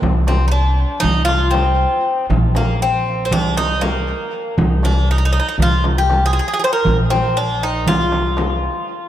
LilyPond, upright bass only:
\new Staff \with { instrumentName = "Upright bass" } { \clef bass \time 9/8 \tempo 4. = 79 c,2 c,2 r8 | bes,,2 c,2 r8 | c,2 c,2 r8 | bes,,2 c,2 r8 | }